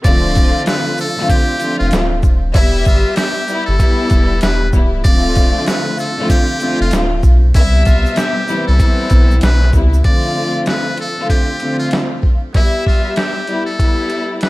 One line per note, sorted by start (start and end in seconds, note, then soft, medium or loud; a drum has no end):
0.04 0.52 D1 loud
0.04 1.07 D3 loud
0.04 1.07 F3 loud
0.04 1.07 A3 loud
0.04 1.07 C4 loud
0.04 1.07 F4 loud
0.04 0.64 D5 loud
0.04 kick loud
0.04 closed hi-hat medium
0.04 shaker medium
0.35 kick loud
0.35 closed hi-hat medium
0.35 shaker medium
0.66 0.96 B4 medium
0.66 snare loud
0.66 closed hi-hat medium
0.66 shaker medium
0.97 1.28 A4 loud
0.97 shaker medium
0.97 shaker soft
1.18 1.58 D3 loud
1.18 1.58 F3 medium
1.18 1.59 A3 medium
1.18 1.59 C4 medium
1.18 1.59 F4 loud
1.29 1.78 G4 loud
1.29 kick loud
1.29 closed hi-hat loud
1.29 shaker medium
1.60 2.35 D3 loud
1.60 2.35 F3 medium
1.60 2.35 A3 medium
1.60 2.35 C4 medium
1.60 2.36 F4 loud
1.60 closed hi-hat soft
1.60 shaker soft
1.60 shaker medium
1.79 1.91 F1 medium
1.79 1.90 F4 medium
1.91 2.21 D1 medium
1.91 snare loud
1.91 closed hi-hat medium
1.91 shaker medium
2.22 2.52 D#1 loud
2.22 kick medium
2.22 shaker soft
2.53 2.83 E1 loud
2.53 3.42 G3 loud
2.53 3.43 B3 medium
2.53 2.83 E4 loud
2.53 3.43 E5 loud
2.53 kick loud
2.53 closed hi-hat loud
2.53 shaker medium
2.85 3.04 G1 medium
2.85 3.15 F4 medium
2.85 kick loud
2.85 closed hi-hat medium
2.85 shaker medium
3.16 3.64 G4 medium
3.16 snare loud
3.16 closed hi-hat medium
3.16 shaker medium
3.47 3.78 G3 medium
3.47 3.78 B3 medium
3.47 3.78 E4 loud
3.47 shaker medium
3.66 3.79 G1 medium
3.66 4.37 A4 medium
3.79 4.67 G3 loud
3.79 4.68 B3 loud
3.79 4.68 E4 loud
3.79 kick medium
3.79 closed hi-hat loud
3.79 shaker medium
4.10 4.39 E1 medium
4.10 kick loud
4.10 closed hi-hat medium
4.10 shaker soft
4.41 4.71 E1 medium
4.41 4.70 B4 medium
4.41 snare loud
4.41 closed hi-hat medium
4.41 shaker medium
4.72 5.02 C#1 medium
4.72 5.02 G3 medium
4.72 5.03 B3 medium
4.72 5.03 E4 medium
4.72 kick medium
4.72 shaker soft
5.04 5.52 D1 loud
5.04 6.07 D3 loud
5.04 6.07 F3 medium
5.04 6.07 A3 loud
5.04 6.07 C4 loud
5.04 6.08 F4 loud
5.04 5.63 D5 loud
5.04 kick loud
5.04 closed hi-hat loud
5.04 shaker medium
5.35 kick loud
5.35 closed hi-hat medium
5.35 shaker medium
5.66 5.96 B4 medium
5.66 snare loud
5.66 closed hi-hat medium
5.66 shaker medium
5.98 6.27 A4 medium
5.98 shaker medium
6.17 6.58 D3 loud
6.17 6.58 F3 medium
6.17 6.58 A3 medium
6.17 6.58 C4 medium
6.17 6.58 F4 loud
6.29 6.78 G4 medium
6.29 kick medium
6.29 closed hi-hat loud
6.29 shaker medium
6.60 7.35 D3 medium
6.60 7.35 F3 loud
6.60 7.35 A3 medium
6.60 7.35 C4 medium
6.60 7.36 F4 loud
6.60 closed hi-hat soft
6.60 shaker soft
6.60 shaker medium
6.81 6.91 F1 loud
6.81 6.92 F4 medium
6.91 7.21 D1 loud
6.91 snare loud
6.91 closed hi-hat medium
6.91 shaker medium
7.23 7.52 B1 loud
7.23 kick medium
7.23 shaker medium
7.23 shaker soft
7.54 7.83 C2 loud
7.54 8.43 B2 medium
7.54 8.43 C3 loud
7.54 8.43 G3 loud
7.54 8.44 B3 loud
7.54 7.83 E4 loud
7.54 8.44 E5 loud
7.54 kick loud
7.54 closed hi-hat medium
7.54 shaker medium
7.85 8.04 C2 medium
7.85 8.14 F4 medium
7.85 kick loud
7.85 closed hi-hat medium
7.85 shaker medium
7.87 shaker medium
8.06 shaker soft
8.16 8.65 G4 medium
8.16 snare loud
8.16 closed hi-hat medium
8.16 shaker medium
8.47 8.77 C3 loud
8.47 8.77 E3 medium
8.47 8.78 G3 loud
8.47 8.78 B3 medium
8.47 8.78 E4 loud
8.47 shaker medium
8.67 8.79 C2 loud
8.67 9.38 A4 medium
8.78 9.67 E3 medium
8.78 9.68 G3 loud
8.78 9.68 B3 loud
8.78 9.67 C4 loud
8.78 9.68 E4 loud
8.78 kick loud
8.78 closed hi-hat loud
8.78 shaker medium
9.10 9.39 B1 medium
9.10 kick loud
9.10 closed hi-hat medium
9.10 shaker medium
9.10 shaker soft
9.31 shaker soft
9.41 9.71 B1 loud
9.41 9.71 B4 medium
9.41 snare loud
9.41 closed hi-hat medium
9.41 shaker medium
9.62 snare soft
9.73 10.02 C#2 loud
9.73 10.03 C3 medium
9.73 10.03 E3 medium
9.73 10.03 G3 medium
9.73 10.03 B3 medium
9.73 10.04 E4 medium
9.73 kick medium
9.73 shaker medium
9.73 shaker soft
9.94 shaker medium
10.04 11.07 D3 loud
10.04 11.07 F3 medium
10.04 11.07 A3 medium
10.04 11.07 C4 medium
10.04 11.08 F4 loud
10.04 10.64 D5 loud
10.04 kick loud
10.04 closed hi-hat medium
10.66 10.96 B4 medium
10.66 snare loud
10.66 closed hi-hat medium
10.97 11.28 A4 medium
10.97 closed hi-hat medium
11.18 11.58 D3 medium
11.18 11.58 F3 medium
11.18 11.59 A3 medium
11.18 11.59 C4 medium
11.18 11.59 F4 loud
11.30 11.78 G4 medium
11.30 kick medium
11.30 closed hi-hat loud
11.60 12.35 D3 loud
11.60 12.35 F3 medium
11.60 12.35 A3 medium
11.60 12.36 C4 medium
11.60 12.36 F4 loud
11.60 closed hi-hat soft
11.79 11.90 F4 medium
11.91 snare loud
11.91 closed hi-hat medium
12.23 kick medium
12.53 13.42 G3 loud
12.53 13.43 B3 medium
12.53 12.83 E4 loud
12.53 13.43 E5 loud
12.53 kick loud
12.53 closed hi-hat medium
12.87 13.15 F4 medium
12.87 kick medium
13.16 13.65 G4 medium
13.16 snare loud
13.16 closed hi-hat medium
13.47 13.78 G3 medium
13.47 13.78 B3 medium
13.47 13.78 E4 loud
13.47 closed hi-hat medium
13.66 14.37 A4 medium
13.79 14.49 G3 loud
13.79 14.49 B3 medium
13.79 14.49 E4 loud
13.79 kick medium
13.79 closed hi-hat loud
14.10 closed hi-hat soft
14.41 14.49 B4 medium
14.41 snare loud
14.41 closed hi-hat medium